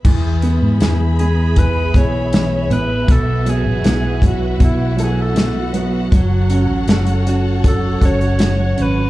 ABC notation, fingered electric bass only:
X:1
M:4/4
L:1/16
Q:1/4=79
K:E
V:1 name="Fingered electric bass" clef=bass
E,,3 G,, E,,6 B,,,4 A,,,2 | B,,,3 A,,, B,,,4 B,,,8 | F,,,3 A,,, F,,,6 F,,,4 G,,,2 |]